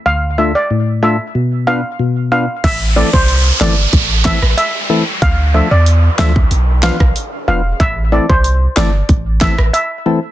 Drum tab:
CC |----------------|x---------------|----------------|----------------|
HH |----------------|x---x---x---x---|x---x---x---x---|x---x---x---x---|
CP |----------------|------x---x-----|------x---x-----|------x---x-----|
SD |----------------|------o---or----|------o---or----|------o---or----|
BD |----------------|o--o----o-o-----|o------o---o----|o--o----o-o-----|